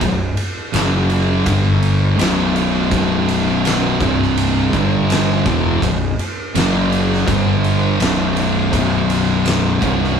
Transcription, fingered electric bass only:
0.01 0.35 B0 medium
0.74 1.42 F#1 medium
1.46 2.15 G1 loud
2.18 2.87 B0 medium
2.91 3.96 B0 medium
4.01 4.69 C1 medium
4.73 5.42 G1 medium
5.46 5.80 E1 medium
5.82 6.16 B0 medium
6.55 7.23 F#1 medium
7.28 7.96 G1 loud
8.00 8.69 B0 medium
8.74 9.78 B0 medium
9.82 10.20 C1 medium

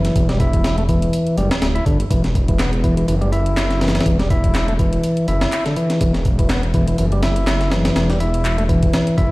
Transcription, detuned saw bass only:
0.16 1.07 E1 loud
1.38 1.51 F#1 loud
1.51 1.60 D1 soft
1.62 1.79 D1 medium
1.86 2.03 G1 medium
2.11 3.02 E1 loud
3.08 4.00 F#1 medium
4.06 4.97 E1 loud
5.28 5.45 F#1 loud
6.01 6.93 E1 loud
6.99 7.90 F#1 medium
7.96 8.88 E1 loud
9.18 9.31 F#1 loud

